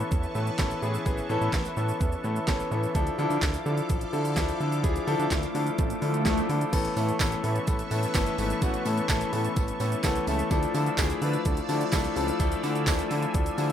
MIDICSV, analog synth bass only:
0, 0, Header, 1, 2, 480
1, 0, Start_track
1, 0, Key_signature, 3, "major"
1, 0, Tempo, 472441
1, 1077, Time_signature, 4, 2, 24, 8
1, 13943, End_track
2, 0, Start_track
2, 0, Title_t, "Analog synth bass"
2, 0, Program_c, 0, 38
2, 118, Note_on_c, 0, 40, 101
2, 274, Note_off_c, 0, 40, 0
2, 355, Note_on_c, 0, 45, 95
2, 512, Note_off_c, 0, 45, 0
2, 597, Note_on_c, 0, 33, 97
2, 753, Note_off_c, 0, 33, 0
2, 836, Note_on_c, 0, 45, 95
2, 992, Note_off_c, 0, 45, 0
2, 1076, Note_on_c, 0, 33, 102
2, 1232, Note_off_c, 0, 33, 0
2, 1317, Note_on_c, 0, 45, 107
2, 1395, Note_off_c, 0, 45, 0
2, 1437, Note_on_c, 0, 45, 91
2, 1515, Note_off_c, 0, 45, 0
2, 1553, Note_on_c, 0, 33, 105
2, 1710, Note_off_c, 0, 33, 0
2, 1796, Note_on_c, 0, 45, 105
2, 1953, Note_off_c, 0, 45, 0
2, 2040, Note_on_c, 0, 40, 105
2, 2195, Note_off_c, 0, 40, 0
2, 2277, Note_on_c, 0, 45, 103
2, 2433, Note_off_c, 0, 45, 0
2, 2517, Note_on_c, 0, 33, 95
2, 2673, Note_off_c, 0, 33, 0
2, 2757, Note_on_c, 0, 45, 102
2, 2913, Note_off_c, 0, 45, 0
2, 2997, Note_on_c, 0, 38, 99
2, 3153, Note_off_c, 0, 38, 0
2, 3236, Note_on_c, 0, 50, 101
2, 3314, Note_off_c, 0, 50, 0
2, 3356, Note_on_c, 0, 50, 97
2, 3434, Note_off_c, 0, 50, 0
2, 3474, Note_on_c, 0, 38, 103
2, 3631, Note_off_c, 0, 38, 0
2, 3716, Note_on_c, 0, 50, 101
2, 3872, Note_off_c, 0, 50, 0
2, 3959, Note_on_c, 0, 33, 98
2, 4114, Note_off_c, 0, 33, 0
2, 4196, Note_on_c, 0, 50, 97
2, 4438, Note_on_c, 0, 38, 108
2, 4453, Note_off_c, 0, 50, 0
2, 4593, Note_off_c, 0, 38, 0
2, 4677, Note_on_c, 0, 50, 100
2, 4916, Note_on_c, 0, 38, 121
2, 4931, Note_off_c, 0, 50, 0
2, 5072, Note_off_c, 0, 38, 0
2, 5157, Note_on_c, 0, 50, 103
2, 5235, Note_off_c, 0, 50, 0
2, 5276, Note_on_c, 0, 50, 101
2, 5354, Note_off_c, 0, 50, 0
2, 5394, Note_on_c, 0, 38, 105
2, 5551, Note_off_c, 0, 38, 0
2, 5637, Note_on_c, 0, 50, 101
2, 5793, Note_off_c, 0, 50, 0
2, 5879, Note_on_c, 0, 33, 99
2, 6034, Note_off_c, 0, 33, 0
2, 6117, Note_on_c, 0, 50, 101
2, 6358, Note_on_c, 0, 38, 100
2, 6373, Note_off_c, 0, 50, 0
2, 6513, Note_off_c, 0, 38, 0
2, 6597, Note_on_c, 0, 50, 104
2, 6753, Note_off_c, 0, 50, 0
2, 6837, Note_on_c, 0, 33, 107
2, 6993, Note_off_c, 0, 33, 0
2, 7077, Note_on_c, 0, 45, 111
2, 7233, Note_off_c, 0, 45, 0
2, 7314, Note_on_c, 0, 33, 115
2, 7471, Note_off_c, 0, 33, 0
2, 7557, Note_on_c, 0, 45, 101
2, 7713, Note_off_c, 0, 45, 0
2, 7799, Note_on_c, 0, 33, 104
2, 7955, Note_off_c, 0, 33, 0
2, 8036, Note_on_c, 0, 45, 102
2, 8192, Note_off_c, 0, 45, 0
2, 8277, Note_on_c, 0, 31, 96
2, 8433, Note_off_c, 0, 31, 0
2, 8515, Note_on_c, 0, 32, 102
2, 8672, Note_off_c, 0, 32, 0
2, 8757, Note_on_c, 0, 33, 109
2, 8913, Note_off_c, 0, 33, 0
2, 8997, Note_on_c, 0, 45, 109
2, 9153, Note_off_c, 0, 45, 0
2, 9234, Note_on_c, 0, 33, 107
2, 9391, Note_off_c, 0, 33, 0
2, 9476, Note_on_c, 0, 45, 101
2, 9632, Note_off_c, 0, 45, 0
2, 9719, Note_on_c, 0, 33, 113
2, 9875, Note_off_c, 0, 33, 0
2, 9956, Note_on_c, 0, 45, 99
2, 10112, Note_off_c, 0, 45, 0
2, 10198, Note_on_c, 0, 36, 98
2, 10354, Note_off_c, 0, 36, 0
2, 10437, Note_on_c, 0, 37, 101
2, 10593, Note_off_c, 0, 37, 0
2, 10676, Note_on_c, 0, 38, 110
2, 10832, Note_off_c, 0, 38, 0
2, 10917, Note_on_c, 0, 50, 109
2, 11073, Note_off_c, 0, 50, 0
2, 11153, Note_on_c, 0, 38, 110
2, 11310, Note_off_c, 0, 38, 0
2, 11396, Note_on_c, 0, 50, 103
2, 11552, Note_off_c, 0, 50, 0
2, 11639, Note_on_c, 0, 38, 104
2, 11794, Note_off_c, 0, 38, 0
2, 11876, Note_on_c, 0, 50, 102
2, 12032, Note_off_c, 0, 50, 0
2, 12118, Note_on_c, 0, 36, 96
2, 12273, Note_off_c, 0, 36, 0
2, 12356, Note_on_c, 0, 37, 102
2, 12512, Note_off_c, 0, 37, 0
2, 12596, Note_on_c, 0, 38, 116
2, 12752, Note_off_c, 0, 38, 0
2, 12836, Note_on_c, 0, 50, 107
2, 13073, Note_on_c, 0, 38, 117
2, 13089, Note_off_c, 0, 50, 0
2, 13231, Note_off_c, 0, 38, 0
2, 13317, Note_on_c, 0, 50, 103
2, 13473, Note_off_c, 0, 50, 0
2, 13559, Note_on_c, 0, 38, 104
2, 13714, Note_off_c, 0, 38, 0
2, 13796, Note_on_c, 0, 50, 97
2, 13943, Note_off_c, 0, 50, 0
2, 13943, End_track
0, 0, End_of_file